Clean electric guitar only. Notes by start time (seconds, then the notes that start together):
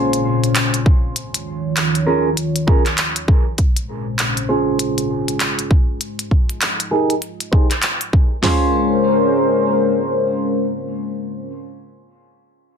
Already playing: C#4 F4 G#4 C5
2.07 C#4 F4 G#4 A#4
2.67 C#4 F4 G#4 A#4
4.49 C#4 F4 G#4 C5
6.91 D#4 G4 G#4 A#4
7.52 D#4 G4 G#4 C5
8.43 C#4 F4 G#4 C5